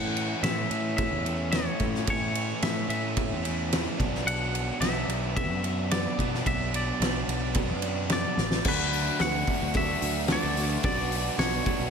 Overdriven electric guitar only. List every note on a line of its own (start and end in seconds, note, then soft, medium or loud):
0.00 0.72 E3 medium
0.00 0.71 A3 medium
0.00 0.70 C#4 medium
0.70 2.04 E3 medium
0.70 2.05 A3 medium
0.70 2.06 C#4 medium
2.05 2.87 E3 medium
2.05 2.88 A3 medium
2.05 2.87 C#4 medium
2.88 3.97 E3 medium
2.88 3.97 A3 medium
2.88 3.97 C#4 medium
3.97 4.81 F#3 medium
3.97 4.82 B3 medium
3.97 4.82 D4 loud
4.81 6.18 F#3 medium
4.81 6.19 B3 medium
4.81 6.20 D4 medium
6.19 6.99 F#3 medium
6.19 7.00 B3 medium
6.19 7.00 D4 medium
7.00 8.36 F#3 medium
7.00 8.36 B3 medium
7.00 8.37 D4 medium
8.65 9.19 A3 medium
8.65 9.19 D4 medium
8.65 9.20 F#4 medium
9.20 9.47 A3 medium
9.20 9.47 D4 medium
9.20 9.47 F#4 medium
9.48 9.75 A3 medium
9.48 9.75 D4 medium
9.48 9.75 F#4 loud
9.75 10.28 A3 loud
9.75 10.28 D4 loud
9.75 10.28 F#4 loud
10.29 10.56 A3 medium
10.29 10.56 D4 medium
10.29 10.56 F#4 medium
10.56 10.84 A3 medium
10.56 10.83 D4 medium
10.56 10.83 F#4 medium
10.84 11.37 B3 medium
10.84 11.37 D4 loud
10.84 11.38 F#4 medium
11.38 11.63 B3 medium
11.38 11.64 D4 medium
11.38 11.65 F#4 medium
11.64 11.90 B3 medium
11.64 11.90 D4 medium
11.64 11.90 F#4 medium